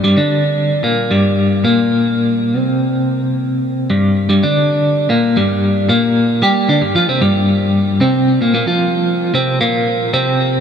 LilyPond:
\new Staff \with { instrumentName = "Clean electric guitar" } { \clef bass \time 4/4 \key g \minor \tempo 4 = 113 <g, g>16 <d d'>4~ <d d'>16 <bes, bes>8 <g, g>4 <bes, bes>4~ | <bes, bes>8. <c c'>2~ <c c'>8 <g, g>8. | <g, g>16 <d d'>4~ <d d'>16 <bes, bes>8 <g, g>4 <bes, bes>4 | <g g'>8 <d d'>16 <g, g>16 <f f'>16 <c c'>16 <g, g>4. <c c'>8. <bes, bes>16 |
<bes, bes>16 <f f'>4~ <f f'>16 <c c'>8 <bes, bes>4 <c c'>4 | }